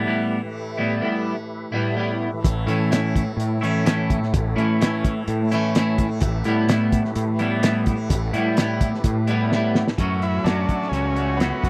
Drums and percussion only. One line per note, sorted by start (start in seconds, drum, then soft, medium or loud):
2.44 kick loud
2.44 closed hi-hat medium
2.68 closed hi-hat medium
2.92 snare loud
2.92 closed hi-hat medium
3.16 kick medium
3.16 closed hi-hat medium
3.40 closed hi-hat medium
3.64 closed hi-hat medium
3.86 snare loud
3.86 closed hi-hat medium
4.10 kick medium
4.10 closed hi-hat medium
4.23 snare soft
4.34 kick loud
4.34 closed hi-hat medium
4.58 closed hi-hat medium
4.81 snare loud
4.81 closed hi-hat loud
5.04 kick medium
5.04 closed hi-hat medium
5.28 closed hi-hat medium
5.52 closed hi-hat medium
5.75 snare loud
5.75 closed hi-hat medium
5.98 kick medium
5.98 closed hi-hat medium
6.21 kick loud
6.21 closed hi-hat medium
6.44 closed hi-hat medium
6.69 snare loud
6.69 closed hi-hat medium
6.92 kick medium
6.92 closed hi-hat medium
7.05 snare soft
7.16 closed hi-hat medium
7.39 closed hi-hat medium
7.63 snare loud
7.63 closed hi-hat medium
7.86 kick medium
7.86 closed hi-hat medium
8.10 kick loud
8.10 closed hi-hat medium
8.34 closed hi-hat medium
8.57 snare loud
8.57 closed hi-hat medium
8.81 kick medium
8.81 closed hi-hat medium
8.94 snare soft
9.04 kick medium
9.04 closed hi-hat medium
9.28 closed hi-hat medium
9.52 snare medium
9.75 snare medium
9.88 snare medium
9.98 kick medium
9.98 closed hi-hat medium
10.22 closed hi-hat soft
10.46 snare loud
10.46 closed hi-hat medium
10.69 kick medium
10.69 closed hi-hat soft
10.82 snare soft
10.93 closed hi-hat medium
11.16 closed hi-hat medium
11.40 snare loud
11.40 closed hi-hat medium
11.64 kick medium
11.64 closed hi-hat medium